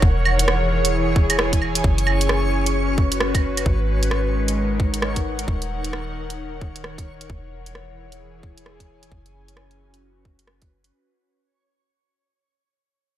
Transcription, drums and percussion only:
0.02 kick loud
0.25 claves medium
0.39 closed hi-hat medium
0.48 cross-stick loud
0.85 closed hi-hat medium
1.16 kick loud
1.30 closed hi-hat soft
1.30 claves medium
1.39 cross-stick loud
1.53 kick medium
1.53 closed hi-hat soft
1.62 claves soft
1.75 closed hi-hat medium
1.84 kick loud
1.98 closed hi-hat soft
2.07 claves medium
2.21 closed hi-hat medium
2.29 cross-stick loud
2.66 closed hi-hat soft
2.98 kick loud
3.12 closed hi-hat soft
3.20 cross-stick loud
3.35 kick loud
3.35 closed hi-hat soft
3.35 claves soft
3.57 closed hi-hat medium
3.57 claves soft
3.66 kick loud
4.03 closed hi-hat medium
4.11 cross-stick loud
4.48 closed hi-hat soft
4.80 kick loud
4.94 closed hi-hat soft
5.02 cross-stick loud
5.16 kick medium
5.16 closed hi-hat soft
5.39 closed hi-hat soft
5.48 kick loud
5.62 closed hi-hat soft
5.84 closed hi-hat soft
5.93 cross-stick loud
6.30 closed hi-hat soft
6.61 kick medium
6.76 closed hi-hat soft
6.84 cross-stick medium
6.98 kick medium
6.98 closed hi-hat soft
7.21 closed hi-hat soft
7.30 kick loud
7.66 closed hi-hat soft
7.75 cross-stick medium
8.12 closed hi-hat soft
8.43 kick medium
8.58 closed hi-hat soft
8.66 cross-stick medium
8.80 kick medium
8.80 closed hi-hat soft
9.03 closed hi-hat medium
9.12 kick loud
9.26 closed hi-hat soft
9.48 closed hi-hat medium
9.57 cross-stick loud
9.71 closed hi-hat soft
9.94 closed hi-hat soft
10.25 kick medium
10.39 closed hi-hat soft
10.47 cross-stick medium
10.62 kick medium
10.62 closed hi-hat soft
10.84 closed hi-hat medium

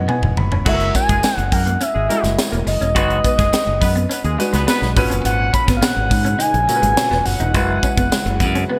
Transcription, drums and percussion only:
0.09 mid tom medium
0.23 floor tom medium
0.37 floor tom medium
0.52 floor tom medium
0.66 kick medium
0.66 crash medium
0.66 tambourine soft
0.80 closed hi-hat soft
0.95 kick medium
0.95 closed hi-hat medium
0.95 tambourine soft
1.09 kick medium
1.09 closed hi-hat medium
1.09 tambourine soft
1.23 snare loud
1.23 closed hi-hat medium
1.23 tambourine medium
1.39 closed hi-hat soft
1.52 kick medium
1.52 open hi-hat medium
1.52 tambourine soft
1.67 closed hi-hat soft
1.81 closed hi-hat loud
1.81 tambourine soft
2.10 closed hi-hat medium
2.10 tambourine soft
2.24 snare soft
2.24 closed hi-hat medium
2.24 tambourine soft
2.39 snare loud
2.39 closed hi-hat medium
2.39 tambourine medium
2.53 closed hi-hat soft
2.53 tambourine soft
2.67 open hi-hat medium
2.67 tambourine soft
2.82 closed hi-hat soft
2.82 tambourine soft
2.96 kick medium
2.96 closed hi-hat medium
2.96 tambourine soft
3.10 closed hi-hat soft
3.24 kick medium
3.24 closed hi-hat medium
3.24 tambourine soft
3.39 kick medium
3.39 snare soft
3.39 closed hi-hat medium
3.53 snare loud
3.53 closed hi-hat medium
3.53 tambourine medium
3.82 kick medium
3.82 open hi-hat medium
3.82 tambourine soft
3.97 closed hi-hat soft
4.11 closed hi-hat loud
4.11 tambourine soft
4.24 closed hi-hat soft
4.40 closed hi-hat medium
4.40 tambourine medium
4.54 snare soft
4.54 closed hi-hat medium
4.54 tambourine soft
4.68 snare medium
4.68 closed hi-hat medium
4.68 tambourine medium
4.82 snare soft
4.82 tambourine soft
4.97 kick loud
4.97 open hi-hat medium
4.97 tambourine soft
5.11 closed hi-hat soft
5.11 tambourine soft
5.25 closed hi-hat medium
5.25 tambourine soft
5.54 kick medium
5.54 closed hi-hat medium
5.54 tambourine soft
5.68 kick medium
5.68 snare soft
5.68 closed hi-hat medium
5.68 tambourine soft
5.82 snare loud
5.82 closed hi-hat medium
5.82 tambourine medium
6.11 kick medium
6.11 open hi-hat medium
6.11 tambourine soft
6.26 closed hi-hat medium
6.40 closed hi-hat loud
6.40 tambourine soft
6.54 closed hi-hat soft
6.69 closed hi-hat medium
6.69 tambourine medium
6.83 closed hi-hat medium
6.97 snare loud
6.97 closed hi-hat medium
6.97 tambourine medium
7.12 snare soft
7.26 open hi-hat medium
7.26 tambourine soft
7.41 closed hi-hat soft
7.54 kick medium
7.54 closed hi-hat medium
7.54 tambourine soft
7.83 kick medium
7.83 closed hi-hat medium
7.83 tambourine soft
7.97 kick loud
7.97 closed hi-hat medium
7.97 tambourine soft
8.12 snare loud
8.12 closed hi-hat medium
8.12 tambourine medium
8.27 closed hi-hat soft
8.40 kick medium
8.40 closed hi-hat medium
8.40 tambourine soft
8.55 closed hi-hat soft

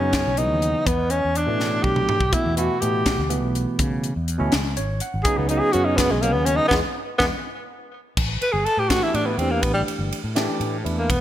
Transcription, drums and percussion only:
0.13 kick medium
0.13 snare loud
0.13 closed hi-hat medium
0.37 closed hi-hat medium
0.62 closed hi-hat medium
0.87 kick medium
0.87 closed hi-hat medium
1.10 closed hi-hat medium
1.35 closed hi-hat medium
1.60 snare medium
1.84 kick medium
1.96 mid tom medium
2.09 floor tom medium
2.21 kick medium
2.33 kick loud
2.33 closed hi-hat medium
2.57 closed hi-hat medium
2.82 closed hi-hat medium
3.06 kick medium
3.06 snare loud
3.06 closed hi-hat medium
3.30 closed hi-hat medium
3.55 closed hi-hat medium
3.79 kick loud
3.79 closed hi-hat medium
4.04 closed hi-hat medium
4.28 closed hi-hat medium
4.52 snare loud
4.52 closed hi-hat medium
4.77 closed hi-hat medium
5.00 closed hi-hat medium
5.25 kick loud
5.25 closed hi-hat medium
5.49 closed hi-hat medium
5.73 closed hi-hat medium
5.98 kick medium
5.98 snare loud
5.98 closed hi-hat medium
6.23 closed hi-hat medium
6.46 closed hi-hat medium
6.71 kick loud
6.71 snare medium
7.20 kick medium
7.20 snare medium
8.17 kick loud
8.17 crash medium
8.42 ride medium
8.66 ride medium
8.90 kick medium
8.90 snare loud
8.90 ride medium
9.15 ride medium
9.39 ride medium
9.63 kick loud
9.63 ride medium
9.88 ride medium
10.12 ride medium
10.36 snare loud
10.36 ride medium
10.61 ride medium
10.86 ride medium
11.10 kick loud
11.10 ride medium

